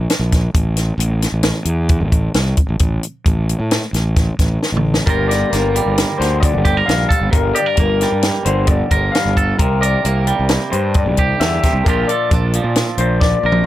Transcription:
0.10 snare, closed hi-hat
0.19 fingered electric bass A#1
0.32 kick, snare, closed hi-hat
0.54 fingered electric bass A1, kick, closed hi-hat
0.77 snare, closed hi-hat
0.98 fingered electric bass A1, closed hi-hat
1.22 snare, closed hi-hat
1.32 fingered electric bass A1
1.43 snare, closed hi-hat
1.65 fingered electric bass E2, closed hi-hat
1.89 kick, closed hi-hat
2.01 fingered electric bass A1
2.12 kick, closed hi-hat
2.34 fingered electric bass C2, snare, closed hi-hat
2.57 kick, closed hi-hat
2.69 fingered electric bass A1
2.79 fingered electric bass A1, kick, closed hi-hat
3.03 closed hi-hat
3.26 fingered electric bass A1, kick, closed hi-hat
3.49 closed hi-hat
3.59 fingered electric bass A2
3.71 snare, closed hi-hat
3.93 fingered electric bass A1, snare, closed hi-hat
4.16 kick, snare, closed hi-hat
4.39 fingered electric bass A1, kick, snare, closed hi-hat
4.63 snare
4.72 fingered electric bass A1
4.77 mid tom
4.94 snare
5.06 fingered electric bass G1, clean electric guitar G2 G3 A#3 F4 A#4, kick, closed hi-hat
5.28 clean electric guitar A#4 D5, closed hi-hat
5.32 snare
5.50 fingered electric bass G1, clean electric guitar A#3 A#4, snare, closed hi-hat
5.76 clean electric guitar G3, closed hi-hat
5.86 fingered electric bass G1
5.98 snare, closed hi-hat
6.18 fingered electric bass D2, clean electric guitar D3 C5, snare, closed hi-hat
6.40 clean electric guitar D5, kick, closed hi-hat
6.54 fingered electric bass G1
6.65 clean electric guitar G4, kick, closed hi-hat
6.77 clean electric guitar A#4
6.86 fingered electric bass A#1, clean electric guitar G2 F5, snare, closed hi-hat
7.09 clean electric guitar A4, kick, closed hi-hat
7.21 fingered electric bass G1
7.31 fingered electric bass G1, clean electric guitar G2 A#4, kick, closed hi-hat
7.54 clean electric guitar G4 D5, closed hi-hat
7.66 clean electric guitar A#4
7.77 fingered electric bass G1, clean electric guitar A#3 A#4, kick, closed hi-hat
8.01 clean electric guitar G3, snare, closed hi-hat
8.12 fingered electric bass G2
8.23 snare, closed hi-hat
8.45 fingered electric bass G1, clean electric guitar D3 C5, closed hi-hat
8.67 clean electric guitar D5, kick, closed hi-hat
8.91 fingered electric bass G1, clean electric guitar A#4, kick, closed hi-hat
9.12 clean electric guitar F5, snare, closed hi-hat
9.16 clean electric guitar G2
9.25 fingered electric bass G1
9.37 clean electric guitar A4, kick, closed hi-hat
9.59 fingered electric bass C2, clean electric guitar C3 A#4, kick, closed hi-hat
9.81 clean electric guitar A#4 D5, closed hi-hat
10.03 fingered electric bass C2, clean electric guitar A#3 A#4, closed hi-hat
10.27 clean electric guitar G3, closed hi-hat
10.39 fingered electric bass C2
10.49 snare, closed hi-hat
10.72 fingered electric bass G2, clean electric guitar G2 C5, closed hi-hat
10.94 clean electric guitar D5, kick, closed hi-hat
11.06 fingered electric bass C2
11.17 clean electric guitar G4, kick, closed hi-hat
11.40 fingered electric bass E2, clean electric guitar D3 E5, snare, closed hi-hat
11.63 clean electric guitar C3, kick, snare, closed hi-hat
11.73 fingered electric bass C2
11.84 fingered electric bass A#1, clean electric guitar A#2 F3 D4 A#4, kick, closed hi-hat
11.89 clean electric guitar F4 G4
12.08 clean electric guitar A4 D5, closed hi-hat
12.31 fingered electric bass A#1, clean electric guitar D4, kick, closed hi-hat
12.53 clean electric guitar F3, closed hi-hat
12.64 fingered electric bass A#2
12.76 snare, closed hi-hat
12.98 fingered electric bass A#1, clean electric guitar A#2 C5, closed hi-hat
13.21 clean electric guitar D5, kick, snare
13.43 fingered electric bass A#1, clean electric guitar A#4
13.52 mid tom

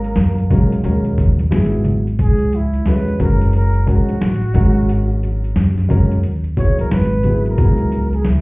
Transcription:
Already playing: upright bass G#1, upright piano G#3 C#4 F#4 A#4, trombone A#3, flugelhorn A#4
0.04 closed hi-hat, shaker
0.16 upright bass F#2, snare, closed hi-hat, shaker
0.38 closed hi-hat, high conga, shaker
0.50 upright bass B1, upright piano G#3 C#4 F#4 A#4, kick, closed hi-hat, low conga, shaker
0.72 closed hi-hat, shaker
0.83 upright bass D#2, upright piano G#3 C#4 F#4 A#4, closed hi-hat, shaker
1.05 closed hi-hat, shaker
1.18 kick, closed hi-hat, low conga, shaker
1.39 closed hi-hat, high conga, shaker
1.51 upright bass G#1, upright piano F#3 B3 E4 G#4, snare, closed hi-hat, shaker
1.72 closed hi-hat, shaker
1.84 closed hi-hat, low conga, shaker
2.06 closed hi-hat, shaker
2.19 upright bass C#2, flugelhorn G#4, kick, closed hi-hat, shaker
2.39 closed hi-hat, shaker
2.52 flugelhorn E4, closed hi-hat, high conga, shaker
2.74 closed hi-hat, shaker
2.85 upright bass E2, upright piano G#3 C#4 F#4 A4, flugelhorn B4, snare, closed hi-hat, shaker
2.94 upright piano B4
3.08 closed hi-hat, high conga, shaker
3.19 upright bass F#1, upright piano G#3 C#4 F#4 A#4, flugelhorn A#4, kick, closed hi-hat, low conga, shaker
3.41 closed hi-hat, shaker
3.53 flugelhorn A#4, closed hi-hat, high conga, shaker
3.74 closed hi-hat, shaker
3.86 upright piano G#3 C#4 F#4 A#4, flugelhorn F#4, kick, closed hi-hat
4.09 muted upright bass stroke, closed hi-hat, high conga, shaker
4.20 upright bass A1, snare, closed hi-hat, shaker
4.41 closed hi-hat, shaker
4.54 upright bass G#1, upright piano G#3 C#4 F#4 A#4, kick, closed hi-hat, high conga, low conga, shaker
4.77 closed hi-hat, shaker
4.89 closed hi-hat, shaker
5.09 closed hi-hat, shaker
5.23 closed hi-hat, high conga, shaker
5.44 closed hi-hat, shaker
5.56 upright bass F#2, snare, closed hi-hat, shaker
5.78 snare, closed hi-hat, high conga, shaker
5.89 upright piano G#3 C#4 F#4 A#4, kick, closed hi-hat, low conga, shaker
6.11 closed hi-hat, shaker
6.23 upright bass D#2, closed hi-hat, high conga, shaker
6.44 closed hi-hat, shaker
6.57 upright piano F#3 B3 E4 G#4, flugelhorn C#5, kick, closed hi-hat
6.78 flugelhorn A#4, muted upright bass stroke, closed hi-hat, high conga, shaker
6.91 upright bass G#1, flugelhorn B4, snare, closed hi-hat, shaker
7.11 closed hi-hat, shaker
7.23 upright piano F#3 B3 E4 G#4, closed hi-hat, high conga, low conga, shaker
7.46 flugelhorn A#4, closed hi-hat, shaker
7.58 upright bass C#2, upright piano F#3 B3 E4 G#4, kick, closed hi-hat, shaker
7.78 closed hi-hat, shaker
7.92 closed hi-hat, high conga, shaker
8.13 flugelhorn G#4, closed hi-hat, shaker
8.25 upright bass D#2, flugelhorn E4, snare, closed hi-hat, shaker

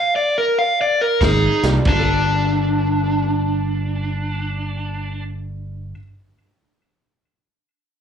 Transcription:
Already playing: overdriven electric guitar F5
0.16 overdriven electric guitar D5
0.38 overdriven electric guitar A#4
0.59 overdriven electric guitar F5
0.81 overdriven electric guitar D5
1.01 overdriven electric guitar A#4
1.21 fingered electric bass G#1, electric slide guitar D#4, overdriven electric guitar G#4, kick, snare, closed hi-hat
1.63 fingered electric bass C2, upright piano G3 A#3 D4 F4 G4, snare, closed hi-hat
1.74 upright piano G2
1.80 upright piano G3
1.85 fingered electric bass G1, upright piano A#3, overdriven electric guitar D4, kick, crash
1.92 upright piano F4
1.99 upright piano A4

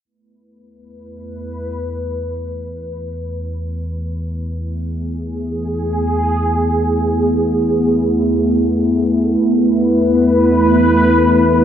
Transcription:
0.05 synth drone E2, analog synth pad A3 B3 E4 B4
4.71 analog synth pad G#4
9.36 synth drone E2, analog synth pad B4

